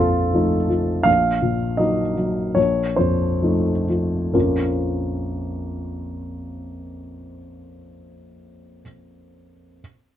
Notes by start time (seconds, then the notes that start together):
Already playing: A#1 F2 F4 A4
0.34 F3 A3 D#4
0.69 F3
1.03 A#1 F5
1.42 A#2
1.77 F#3 A#3 D#4 D#5
2.18 F#3
2.55 A#1 C#5
2.96 F2 C5
3.42 F3 A3 D#4
3.89 F3
4.33 A#1 F2 F3 A#3 C#4 F4 A#4